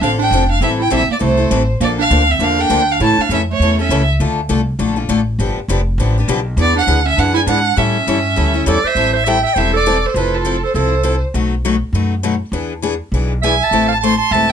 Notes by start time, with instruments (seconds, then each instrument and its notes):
0.01 upright bass A1, steel-string acoustic guitar D3 F3 C4 D4 A4, clarinet D4, violin F5
0.19 steel-string acoustic guitar C4 D4 A4, clarinet D4, violin G5
0.31 upright bass F1, steel-string acoustic guitar D3 F3 C4 D4 A4
0.49 clarinet D4, violin F5
0.61 upright bass A1, steel-string acoustic guitar E3 G3 C4 E4 A4, clarinet C4, violin E5
0.78 clarinet E4, violin G5
0.90 upright bass A#1, steel-string acoustic guitar E3 G3 C4 E4 A4, clarinet C4
0.94 violin E5
1.09 clarinet A#3, violin D5, muted upright bass stroke
1.19 upright bass C2, steel-string acoustic guitar E3 G3 C4 E4 A4, clarinet A3, violin C5
1.37 steel-string acoustic guitar C4 E4 A4
1.50 upright bass A1, steel-string acoustic guitar E3 G3 C4 E4 A4
1.80 upright bass A#1, steel-string acoustic guitar D3 F3 A#3 D4 A4, clarinet A#3, violin D5
1.99 clarinet D4, violin F5
2.10 upright bass D2, steel-string acoustic guitar D3 F3 A#3 D4 A4
2.28 clarinet C4, violin E5
2.39 upright bass E2, steel-string acoustic guitar D3 F3 A#3 D4 A4, clarinet D4
2.43 violin F5
2.59 steel-string acoustic guitar A#3 D4 A4, clarinet D4, violin G5
2.70 upright bass D2, steel-string acoustic guitar D3 F3 A#3 D4 A4
2.89 clarinet D4, violin F5
3.00 upright bass A2, steel-string acoustic guitar C#3 E3 A3 C#4 A4, clarinet E4, violin A5
3.18 clarinet D4, violin F5, muted upright bass stroke
3.29 upright bass F2, steel-string acoustic guitar C#3 E3 A3 C#4 A4, clarinet C#4
3.34 violin E5
3.50 clarinet A3, violin C#5
3.60 upright bass E2, steel-string acoustic guitar C#3 E3 A3 C#4 A4
3.79 steel-string acoustic guitar A3 C#4 A4, clarinet C#4, violin E5
3.89 upright bass C#2, steel-string acoustic guitar C#3 E3 A3 C#4 A4
4.20 upright bass D2, steel-string acoustic guitar D3 A3 D4 F4 A4
4.49 upright bass C2, steel-string acoustic guitar D3 A3 D4 F4 A4
4.79 upright bass A#1, steel-string acoustic guitar D3 A3 D4 F4 A4
4.96 steel-string acoustic guitar D4 F4 A4
5.09 upright bass A1, steel-string acoustic guitar D3 A3 D4 F4 A4
5.39 upright bass G1, steel-string acoustic guitar D3 F3 B3 D4 G4
5.57 muted upright bass stroke
5.68 upright bass F1, steel-string acoustic guitar D3 F3 B3 D4 G4
5.98 upright bass A1, steel-string acoustic guitar D3 F3 B3 D4 G4
6.18 steel-string acoustic guitar B3 D4 G4
6.28 upright bass B1, steel-string acoustic guitar D3 F3 B3 D4 G4
6.57 upright bass E2, steel-string acoustic guitar E3 B3 D4 G#4, clarinet B3
6.61 violin D5
6.76 clarinet D4, violin F#5
6.87 upright bass D2, steel-string acoustic guitar E3 B3 D4 G#4
7.05 clarinet C#4, violin E5
7.16 upright bass F#2, steel-string acoustic guitar E3 B3 D4 G#4, clarinet D4, violin F#5
7.34 steel-string acoustic guitar B3 D4 G#4, clarinet E4, violin G#5
7.47 upright bass G#2, steel-string acoustic guitar E3 B3 D4 G#4, clarinet D4, violin F#5
7.76 upright bass A2, steel-string acoustic guitar E3 G3 C#4 E4 A4, clarinet C#4, violin E5
8.07 upright bass G2, steel-string acoustic guitar E3 G3 C#4 E4 A4
8.36 upright bass D2, steel-string acoustic guitar E3 G3 C#4 E4 A4
8.54 steel-string acoustic guitar C#4 E4 A4
8.66 upright bass E2, steel-string acoustic guitar E3 G3 C#4 E4 A4, clarinet A4, violin D5
8.84 clarinet C5, violin E5, muted upright bass stroke
8.95 upright bass A1, steel-string acoustic guitar E3 G3 C4 E4 A4
9.13 clarinet C5, violin E5
9.25 steel-string acoustic guitar E3 G3 C4 E4 A4, clarinet E5, violin G5
9.43 clarinet E5, violin G5
9.54 upright bass E1, steel-string acoustic guitar E3 G3 C4 E4 A4, clarinet C5, violin E5
9.73 clarinet A4, violin D5
9.86 steel-string acoustic guitar E3 G3 C4 E4 A4
10.03 clarinet A4, violin C5
10.14 upright bass F1, steel-string acoustic guitar F3 C4 E4 A4, clarinet F4, violin B4
10.34 clarinet F4, violin A4
10.45 steel-string acoustic guitar F3 C4 E4 A4
10.63 clarinet A4, violin C5
10.74 upright bass C2, steel-string acoustic guitar F3 C4 E4 A4, clarinet A4, violin C5
11.03 steel-string acoustic guitar F3 C4 E4 A4
11.34 upright bass B1, steel-string acoustic guitar B2 F#3 A3 D#4 F#4
11.65 steel-string acoustic guitar B2 F#3 A3 D#4 F#4
11.93 upright bass F#2, steel-string acoustic guitar B2 F#3 A3 D#4 F#4
12.23 steel-string acoustic guitar B2 F#3 A3 D#4 F#4
12.52 upright bass E2, steel-string acoustic guitar E3 B3 D4 G#4
12.82 steel-string acoustic guitar E3 B3 D4 G#4
13.12 upright bass B1, steel-string acoustic guitar E3 B3 D4 G#4
13.42 steel-string acoustic guitar E3 B3 D4 G#4, clarinet E5, violin G#5
13.59 clarinet E5, violin A5
13.71 upright bass A1, steel-string acoustic guitar E3 A3 C4 E4 A4
13.88 clarinet F5
13.93 violin A5
14.01 steel-string acoustic guitar E3 A3 C4 E4 A4, clarinet A5, violin C6
14.18 clarinet A5, violin C6
14.31 upright bass E1, steel-string acoustic guitar E3 A3 C4 E4 A4, clarinet E5, violin A5
14.48 clarinet E5